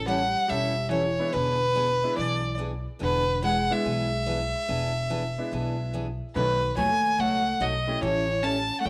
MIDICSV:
0, 0, Header, 1, 6, 480
1, 0, Start_track
1, 0, Tempo, 417827
1, 1535, Time_signature, 4, 2, 24, 8
1, 10219, End_track
2, 0, Start_track
2, 0, Title_t, "Fiddle"
2, 0, Program_c, 0, 110
2, 85, Note_on_c, 0, 78, 96
2, 563, Note_on_c, 0, 76, 95
2, 580, Note_off_c, 0, 78, 0
2, 1038, Note_off_c, 0, 76, 0
2, 1045, Note_on_c, 0, 73, 89
2, 1522, Note_on_c, 0, 71, 97
2, 1539, Note_off_c, 0, 73, 0
2, 2490, Note_off_c, 0, 71, 0
2, 2497, Note_on_c, 0, 74, 79
2, 2943, Note_off_c, 0, 74, 0
2, 3480, Note_on_c, 0, 71, 98
2, 3916, Note_off_c, 0, 71, 0
2, 3953, Note_on_c, 0, 78, 97
2, 4274, Note_on_c, 0, 76, 93
2, 4291, Note_off_c, 0, 78, 0
2, 6829, Note_off_c, 0, 76, 0
2, 7296, Note_on_c, 0, 71, 89
2, 7743, Note_off_c, 0, 71, 0
2, 7778, Note_on_c, 0, 80, 98
2, 8271, Note_on_c, 0, 78, 103
2, 8288, Note_off_c, 0, 80, 0
2, 8747, Note_on_c, 0, 75, 86
2, 8764, Note_off_c, 0, 78, 0
2, 9221, Note_off_c, 0, 75, 0
2, 9226, Note_on_c, 0, 73, 98
2, 9693, Note_on_c, 0, 81, 95
2, 9710, Note_off_c, 0, 73, 0
2, 10107, Note_off_c, 0, 81, 0
2, 10114, Note_on_c, 0, 78, 72
2, 10170, Note_on_c, 0, 79, 100
2, 10187, Note_off_c, 0, 78, 0
2, 10219, Note_off_c, 0, 79, 0
2, 10219, End_track
3, 0, Start_track
3, 0, Title_t, "Upright piano"
3, 0, Program_c, 1, 0
3, 1371, Note_on_c, 1, 56, 63
3, 1371, Note_on_c, 1, 59, 63
3, 1373, Note_on_c, 1, 64, 78
3, 1375, Note_on_c, 1, 62, 65
3, 1519, Note_off_c, 1, 56, 0
3, 1519, Note_off_c, 1, 59, 0
3, 1521, Note_off_c, 1, 64, 0
3, 1522, Note_off_c, 1, 62, 0
3, 2338, Note_on_c, 1, 59, 63
3, 2341, Note_on_c, 1, 56, 66
3, 2341, Note_on_c, 1, 62, 62
3, 2342, Note_on_c, 1, 64, 77
3, 2484, Note_off_c, 1, 59, 0
3, 2485, Note_off_c, 1, 56, 0
3, 2485, Note_off_c, 1, 62, 0
3, 2486, Note_off_c, 1, 64, 0
3, 4251, Note_on_c, 1, 59, 69
3, 4253, Note_on_c, 1, 56, 76
3, 4255, Note_on_c, 1, 62, 65
3, 4258, Note_on_c, 1, 64, 81
3, 4401, Note_off_c, 1, 59, 0
3, 4402, Note_off_c, 1, 56, 0
3, 4403, Note_off_c, 1, 62, 0
3, 4405, Note_off_c, 1, 64, 0
3, 6180, Note_on_c, 1, 56, 64
3, 6185, Note_on_c, 1, 59, 55
3, 6187, Note_on_c, 1, 62, 55
3, 6188, Note_on_c, 1, 64, 65
3, 6789, Note_off_c, 1, 56, 0
3, 6791, Note_off_c, 1, 59, 0
3, 6793, Note_off_c, 1, 62, 0
3, 6793, Note_off_c, 1, 64, 0
3, 7295, Note_on_c, 1, 57, 58
3, 7297, Note_on_c, 1, 63, 57
3, 7299, Note_on_c, 1, 59, 49
3, 7299, Note_on_c, 1, 66, 69
3, 7578, Note_off_c, 1, 57, 0
3, 7579, Note_off_c, 1, 63, 0
3, 7580, Note_off_c, 1, 66, 0
3, 7581, Note_off_c, 1, 59, 0
3, 9043, Note_on_c, 1, 57, 68
3, 9047, Note_on_c, 1, 61, 62
3, 9049, Note_on_c, 1, 64, 65
3, 9052, Note_on_c, 1, 67, 75
3, 9196, Note_off_c, 1, 57, 0
3, 9198, Note_off_c, 1, 61, 0
3, 9199, Note_off_c, 1, 64, 0
3, 9201, Note_off_c, 1, 67, 0
3, 10219, End_track
4, 0, Start_track
4, 0, Title_t, "Steel-string acoustic guitar"
4, 0, Program_c, 2, 25
4, 88, Note_on_c, 2, 52, 66
4, 93, Note_on_c, 2, 55, 65
4, 96, Note_on_c, 2, 61, 76
4, 99, Note_on_c, 2, 64, 72
4, 101, Note_on_c, 2, 69, 75
4, 225, Note_off_c, 2, 52, 0
4, 227, Note_off_c, 2, 55, 0
4, 229, Note_off_c, 2, 61, 0
4, 231, Note_off_c, 2, 64, 0
4, 231, Note_off_c, 2, 69, 0
4, 563, Note_on_c, 2, 52, 48
4, 564, Note_on_c, 2, 55, 57
4, 571, Note_on_c, 2, 61, 55
4, 571, Note_on_c, 2, 64, 59
4, 578, Note_on_c, 2, 69, 57
4, 822, Note_off_c, 2, 52, 0
4, 823, Note_off_c, 2, 55, 0
4, 826, Note_off_c, 2, 61, 0
4, 827, Note_off_c, 2, 64, 0
4, 830, Note_off_c, 2, 69, 0
4, 1039, Note_on_c, 2, 52, 60
4, 1044, Note_on_c, 2, 55, 68
4, 1047, Note_on_c, 2, 61, 62
4, 1047, Note_on_c, 2, 64, 72
4, 1050, Note_on_c, 2, 69, 66
4, 1181, Note_off_c, 2, 52, 0
4, 1184, Note_off_c, 2, 55, 0
4, 1185, Note_off_c, 2, 61, 0
4, 1185, Note_off_c, 2, 64, 0
4, 1187, Note_off_c, 2, 69, 0
4, 1524, Note_on_c, 2, 52, 60
4, 1524, Note_on_c, 2, 59, 57
4, 1534, Note_on_c, 2, 62, 67
4, 1537, Note_on_c, 2, 68, 64
4, 1784, Note_off_c, 2, 52, 0
4, 1784, Note_off_c, 2, 59, 0
4, 1789, Note_off_c, 2, 62, 0
4, 1790, Note_off_c, 2, 68, 0
4, 2007, Note_on_c, 2, 52, 71
4, 2014, Note_on_c, 2, 59, 72
4, 2018, Note_on_c, 2, 62, 76
4, 2019, Note_on_c, 2, 68, 81
4, 2146, Note_off_c, 2, 52, 0
4, 2149, Note_off_c, 2, 59, 0
4, 2151, Note_off_c, 2, 62, 0
4, 2152, Note_off_c, 2, 68, 0
4, 2497, Note_on_c, 2, 52, 55
4, 2502, Note_on_c, 2, 59, 51
4, 2508, Note_on_c, 2, 62, 55
4, 2510, Note_on_c, 2, 68, 51
4, 2751, Note_off_c, 2, 52, 0
4, 2753, Note_off_c, 2, 59, 0
4, 2756, Note_off_c, 2, 62, 0
4, 2757, Note_off_c, 2, 68, 0
4, 2960, Note_on_c, 2, 52, 68
4, 2969, Note_on_c, 2, 59, 63
4, 2973, Note_on_c, 2, 62, 66
4, 2978, Note_on_c, 2, 68, 75
4, 3103, Note_off_c, 2, 52, 0
4, 3107, Note_off_c, 2, 59, 0
4, 3109, Note_off_c, 2, 62, 0
4, 3112, Note_off_c, 2, 68, 0
4, 3437, Note_on_c, 2, 52, 60
4, 3444, Note_on_c, 2, 59, 60
4, 3448, Note_on_c, 2, 62, 63
4, 3451, Note_on_c, 2, 68, 63
4, 3701, Note_off_c, 2, 52, 0
4, 3705, Note_off_c, 2, 59, 0
4, 3707, Note_off_c, 2, 62, 0
4, 3708, Note_off_c, 2, 68, 0
4, 3935, Note_on_c, 2, 52, 65
4, 3937, Note_on_c, 2, 59, 76
4, 3942, Note_on_c, 2, 62, 73
4, 3949, Note_on_c, 2, 68, 71
4, 4071, Note_off_c, 2, 52, 0
4, 4072, Note_off_c, 2, 59, 0
4, 4074, Note_off_c, 2, 62, 0
4, 4078, Note_off_c, 2, 68, 0
4, 4421, Note_on_c, 2, 52, 53
4, 4426, Note_on_c, 2, 59, 52
4, 4430, Note_on_c, 2, 62, 55
4, 4431, Note_on_c, 2, 68, 57
4, 4673, Note_off_c, 2, 52, 0
4, 4676, Note_off_c, 2, 59, 0
4, 4678, Note_off_c, 2, 62, 0
4, 4679, Note_off_c, 2, 68, 0
4, 4897, Note_on_c, 2, 52, 65
4, 4897, Note_on_c, 2, 59, 72
4, 4900, Note_on_c, 2, 62, 72
4, 4909, Note_on_c, 2, 68, 69
4, 5032, Note_off_c, 2, 52, 0
4, 5032, Note_off_c, 2, 59, 0
4, 5033, Note_off_c, 2, 62, 0
4, 5038, Note_off_c, 2, 68, 0
4, 5379, Note_on_c, 2, 59, 60
4, 5380, Note_on_c, 2, 52, 62
4, 5384, Note_on_c, 2, 62, 63
4, 5389, Note_on_c, 2, 68, 63
4, 5633, Note_off_c, 2, 52, 0
4, 5633, Note_off_c, 2, 59, 0
4, 5635, Note_off_c, 2, 62, 0
4, 5638, Note_off_c, 2, 68, 0
4, 5857, Note_on_c, 2, 52, 66
4, 5861, Note_on_c, 2, 59, 68
4, 5865, Note_on_c, 2, 62, 76
4, 5867, Note_on_c, 2, 68, 70
4, 5992, Note_off_c, 2, 52, 0
4, 5994, Note_off_c, 2, 59, 0
4, 5996, Note_off_c, 2, 62, 0
4, 5997, Note_off_c, 2, 68, 0
4, 6337, Note_on_c, 2, 52, 55
4, 6347, Note_on_c, 2, 59, 53
4, 6351, Note_on_c, 2, 62, 52
4, 6356, Note_on_c, 2, 68, 61
4, 6591, Note_off_c, 2, 52, 0
4, 6597, Note_off_c, 2, 59, 0
4, 6598, Note_off_c, 2, 62, 0
4, 6601, Note_off_c, 2, 68, 0
4, 6818, Note_on_c, 2, 52, 67
4, 6821, Note_on_c, 2, 59, 61
4, 6827, Note_on_c, 2, 62, 70
4, 6828, Note_on_c, 2, 68, 71
4, 6953, Note_off_c, 2, 52, 0
4, 6954, Note_off_c, 2, 59, 0
4, 6957, Note_off_c, 2, 62, 0
4, 6958, Note_off_c, 2, 68, 0
4, 7306, Note_on_c, 2, 47, 57
4, 7311, Note_on_c, 2, 54, 56
4, 7312, Note_on_c, 2, 57, 60
4, 7316, Note_on_c, 2, 63, 64
4, 7318, Note_on_c, 2, 66, 59
4, 7556, Note_off_c, 2, 47, 0
4, 7558, Note_off_c, 2, 54, 0
4, 7559, Note_off_c, 2, 57, 0
4, 7561, Note_off_c, 2, 63, 0
4, 7562, Note_off_c, 2, 66, 0
4, 7773, Note_on_c, 2, 47, 63
4, 7773, Note_on_c, 2, 54, 72
4, 7775, Note_on_c, 2, 57, 77
4, 7782, Note_on_c, 2, 63, 66
4, 7783, Note_on_c, 2, 66, 76
4, 7909, Note_off_c, 2, 54, 0
4, 7910, Note_off_c, 2, 47, 0
4, 7911, Note_off_c, 2, 57, 0
4, 7914, Note_off_c, 2, 63, 0
4, 7915, Note_off_c, 2, 66, 0
4, 8248, Note_on_c, 2, 47, 54
4, 8250, Note_on_c, 2, 57, 55
4, 8254, Note_on_c, 2, 54, 60
4, 8257, Note_on_c, 2, 63, 50
4, 8262, Note_on_c, 2, 66, 49
4, 8506, Note_off_c, 2, 47, 0
4, 8508, Note_off_c, 2, 57, 0
4, 8509, Note_off_c, 2, 54, 0
4, 8511, Note_off_c, 2, 63, 0
4, 8513, Note_off_c, 2, 66, 0
4, 8731, Note_on_c, 2, 54, 63
4, 8733, Note_on_c, 2, 47, 68
4, 8738, Note_on_c, 2, 57, 66
4, 8738, Note_on_c, 2, 63, 75
4, 8741, Note_on_c, 2, 66, 74
4, 8868, Note_off_c, 2, 54, 0
4, 8869, Note_off_c, 2, 47, 0
4, 8871, Note_off_c, 2, 63, 0
4, 8872, Note_off_c, 2, 57, 0
4, 8873, Note_off_c, 2, 66, 0
4, 9215, Note_on_c, 2, 52, 57
4, 9222, Note_on_c, 2, 55, 55
4, 9222, Note_on_c, 2, 61, 63
4, 9222, Note_on_c, 2, 64, 67
4, 9225, Note_on_c, 2, 69, 66
4, 9469, Note_off_c, 2, 52, 0
4, 9473, Note_off_c, 2, 55, 0
4, 9473, Note_off_c, 2, 61, 0
4, 9473, Note_off_c, 2, 64, 0
4, 9474, Note_off_c, 2, 69, 0
4, 9682, Note_on_c, 2, 52, 65
4, 9692, Note_on_c, 2, 55, 70
4, 9695, Note_on_c, 2, 64, 67
4, 9695, Note_on_c, 2, 69, 75
4, 9696, Note_on_c, 2, 61, 77
4, 9823, Note_off_c, 2, 52, 0
4, 9828, Note_off_c, 2, 55, 0
4, 9829, Note_off_c, 2, 64, 0
4, 9829, Note_off_c, 2, 69, 0
4, 9830, Note_off_c, 2, 61, 0
4, 10168, Note_on_c, 2, 52, 53
4, 10171, Note_on_c, 2, 55, 51
4, 10176, Note_on_c, 2, 61, 54
4, 10177, Note_on_c, 2, 64, 53
4, 10182, Note_on_c, 2, 69, 55
4, 10219, Note_off_c, 2, 52, 0
4, 10219, Note_off_c, 2, 55, 0
4, 10219, Note_off_c, 2, 61, 0
4, 10219, Note_off_c, 2, 64, 0
4, 10219, Note_off_c, 2, 69, 0
4, 10219, End_track
5, 0, Start_track
5, 0, Title_t, "Hollow-body jazz guitar"
5, 0, Program_c, 3, 26
5, 1512, Note_on_c, 3, 50, 68
5, 2480, Note_off_c, 3, 50, 0
5, 3482, Note_on_c, 3, 50, 68
5, 3917, Note_off_c, 3, 50, 0
5, 3953, Note_on_c, 3, 56, 82
5, 4238, Note_off_c, 3, 56, 0
5, 4272, Note_on_c, 3, 56, 70
5, 6829, Note_off_c, 3, 56, 0
5, 7304, Note_on_c, 3, 51, 69
5, 7747, Note_off_c, 3, 51, 0
5, 10116, Note_on_c, 3, 57, 58
5, 10158, Note_off_c, 3, 57, 0
5, 10172, Note_on_c, 3, 57, 85
5, 10219, Note_off_c, 3, 57, 0
5, 10219, End_track
6, 0, Start_track
6, 0, Title_t, "Upright bass"
6, 0, Program_c, 4, 32
6, 0, Note_on_c, 4, 33, 89
6, 383, Note_off_c, 4, 33, 0
6, 574, Note_on_c, 4, 28, 82
6, 1343, Note_off_c, 4, 28, 0
6, 1541, Note_on_c, 4, 28, 90
6, 2308, Note_off_c, 4, 28, 0
6, 2505, Note_on_c, 4, 35, 80
6, 3270, Note_off_c, 4, 35, 0
6, 3461, Note_on_c, 4, 28, 91
6, 4228, Note_off_c, 4, 28, 0
6, 4426, Note_on_c, 4, 35, 77
6, 5191, Note_off_c, 4, 35, 0
6, 5384, Note_on_c, 4, 28, 85
6, 6149, Note_off_c, 4, 28, 0
6, 6345, Note_on_c, 4, 35, 79
6, 7110, Note_off_c, 4, 35, 0
6, 7301, Note_on_c, 4, 35, 90
6, 7683, Note_off_c, 4, 35, 0
6, 7780, Note_on_c, 4, 39, 85
6, 8187, Note_off_c, 4, 39, 0
6, 8257, Note_on_c, 4, 37, 80
6, 8665, Note_off_c, 4, 37, 0
6, 8732, Note_on_c, 4, 35, 75
6, 9141, Note_off_c, 4, 35, 0
6, 9213, Note_on_c, 4, 33, 91
6, 9981, Note_off_c, 4, 33, 0
6, 10172, Note_on_c, 4, 31, 86
6, 10219, Note_off_c, 4, 31, 0
6, 10219, End_track
0, 0, End_of_file